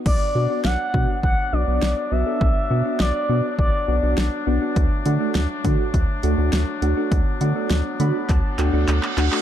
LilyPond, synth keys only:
\new Staff \with { instrumentName = "Synth keys" } { \time 4/4 \key b \phrygian \tempo 4 = 102 << { r1 | r1 | r1 | r4. b''8 a''8 g''8 fis''4 | } \\ { r8 <b d' fis'>16 <b d' fis'>16 r8 <b d' fis'>16 r8. <b d' fis'>16 <b d' fis'>16 r8 <b d' fis'>16 <b d' a'>16 | r8 <b d' fis'>16 <b d' fis'>16 r8 <b d' fis'>16 r8. <b d' fis'>16 <b d' fis'>16 r8 <b d' fis'>16 <b d' fis'>16 | r8 <a d' fis'>16 <a d' fis'>16 r8 <a d' fis'>16 r8. <a d' fis'>16 <a d' fis'>16 r8 <a d' fis'>16 <a d' fis'>16 | r8 <a d' fis'>16 <a d' fis'>16 r8 <a d' fis'>16 r8. <a d' fis'>16 <a d' fis'>16 r8 <a d' fis'>16 <a d' fis'>16 | } >> }